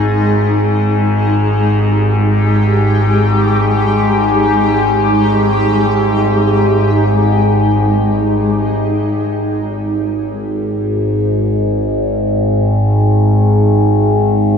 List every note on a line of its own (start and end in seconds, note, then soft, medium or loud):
0.00 8.54 G#1 medium
0.00 8.54 G#2 medium
0.00 8.54 G#3 medium
0.00 8.55 D#4 medium
0.00 1.14 G#4 medium
0.75 8.54 G4 medium
8.55 14.58 G#1 medium
8.55 14.58 G#2 medium